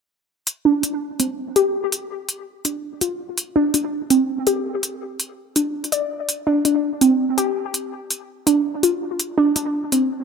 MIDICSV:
0, 0, Header, 1, 3, 480
1, 0, Start_track
1, 0, Key_signature, -1, "minor"
1, 0, Tempo, 363636
1, 619, Time_signature, 4, 2, 24, 8
1, 13517, End_track
2, 0, Start_track
2, 0, Title_t, "Synth pluck"
2, 0, Program_c, 0, 84
2, 859, Note_on_c, 0, 62, 93
2, 1077, Note_off_c, 0, 62, 0
2, 1100, Note_on_c, 0, 62, 70
2, 1557, Note_off_c, 0, 62, 0
2, 1579, Note_on_c, 0, 60, 77
2, 1808, Note_off_c, 0, 60, 0
2, 2059, Note_on_c, 0, 67, 96
2, 2288, Note_off_c, 0, 67, 0
2, 3497, Note_on_c, 0, 62, 73
2, 3727, Note_off_c, 0, 62, 0
2, 3978, Note_on_c, 0, 65, 73
2, 4677, Note_off_c, 0, 65, 0
2, 4696, Note_on_c, 0, 62, 100
2, 4916, Note_off_c, 0, 62, 0
2, 4937, Note_on_c, 0, 62, 72
2, 5396, Note_off_c, 0, 62, 0
2, 5418, Note_on_c, 0, 60, 75
2, 5648, Note_off_c, 0, 60, 0
2, 5898, Note_on_c, 0, 67, 94
2, 6128, Note_off_c, 0, 67, 0
2, 7338, Note_on_c, 0, 62, 75
2, 7568, Note_off_c, 0, 62, 0
2, 7817, Note_on_c, 0, 74, 72
2, 8036, Note_off_c, 0, 74, 0
2, 8537, Note_on_c, 0, 62, 98
2, 8756, Note_off_c, 0, 62, 0
2, 8777, Note_on_c, 0, 62, 70
2, 9236, Note_off_c, 0, 62, 0
2, 9257, Note_on_c, 0, 60, 78
2, 9487, Note_off_c, 0, 60, 0
2, 9737, Note_on_c, 0, 67, 98
2, 9967, Note_off_c, 0, 67, 0
2, 11176, Note_on_c, 0, 62, 82
2, 11407, Note_off_c, 0, 62, 0
2, 11657, Note_on_c, 0, 65, 71
2, 12356, Note_off_c, 0, 65, 0
2, 12377, Note_on_c, 0, 62, 98
2, 12596, Note_off_c, 0, 62, 0
2, 12618, Note_on_c, 0, 62, 75
2, 13077, Note_off_c, 0, 62, 0
2, 13097, Note_on_c, 0, 60, 78
2, 13327, Note_off_c, 0, 60, 0
2, 13517, End_track
3, 0, Start_track
3, 0, Title_t, "Drums"
3, 619, Note_on_c, 9, 42, 70
3, 751, Note_off_c, 9, 42, 0
3, 1100, Note_on_c, 9, 42, 61
3, 1232, Note_off_c, 9, 42, 0
3, 1579, Note_on_c, 9, 42, 75
3, 1711, Note_off_c, 9, 42, 0
3, 2059, Note_on_c, 9, 42, 60
3, 2191, Note_off_c, 9, 42, 0
3, 2539, Note_on_c, 9, 42, 73
3, 2671, Note_off_c, 9, 42, 0
3, 3017, Note_on_c, 9, 42, 61
3, 3149, Note_off_c, 9, 42, 0
3, 3497, Note_on_c, 9, 42, 74
3, 3629, Note_off_c, 9, 42, 0
3, 3978, Note_on_c, 9, 42, 58
3, 4110, Note_off_c, 9, 42, 0
3, 4456, Note_on_c, 9, 42, 68
3, 4588, Note_off_c, 9, 42, 0
3, 4937, Note_on_c, 9, 42, 64
3, 5069, Note_off_c, 9, 42, 0
3, 5417, Note_on_c, 9, 42, 71
3, 5549, Note_off_c, 9, 42, 0
3, 5897, Note_on_c, 9, 42, 56
3, 6029, Note_off_c, 9, 42, 0
3, 6376, Note_on_c, 9, 42, 67
3, 6508, Note_off_c, 9, 42, 0
3, 6858, Note_on_c, 9, 42, 59
3, 6990, Note_off_c, 9, 42, 0
3, 7338, Note_on_c, 9, 42, 69
3, 7470, Note_off_c, 9, 42, 0
3, 7709, Note_on_c, 9, 42, 32
3, 7818, Note_off_c, 9, 42, 0
3, 7818, Note_on_c, 9, 42, 56
3, 7950, Note_off_c, 9, 42, 0
3, 8298, Note_on_c, 9, 42, 64
3, 8430, Note_off_c, 9, 42, 0
3, 8778, Note_on_c, 9, 42, 59
3, 8910, Note_off_c, 9, 42, 0
3, 9258, Note_on_c, 9, 42, 70
3, 9390, Note_off_c, 9, 42, 0
3, 9739, Note_on_c, 9, 42, 55
3, 9871, Note_off_c, 9, 42, 0
3, 10218, Note_on_c, 9, 42, 65
3, 10350, Note_off_c, 9, 42, 0
3, 10699, Note_on_c, 9, 42, 57
3, 10831, Note_off_c, 9, 42, 0
3, 11178, Note_on_c, 9, 42, 70
3, 11310, Note_off_c, 9, 42, 0
3, 11659, Note_on_c, 9, 42, 57
3, 11791, Note_off_c, 9, 42, 0
3, 12138, Note_on_c, 9, 42, 67
3, 12270, Note_off_c, 9, 42, 0
3, 12617, Note_on_c, 9, 42, 58
3, 12749, Note_off_c, 9, 42, 0
3, 13097, Note_on_c, 9, 42, 68
3, 13229, Note_off_c, 9, 42, 0
3, 13517, End_track
0, 0, End_of_file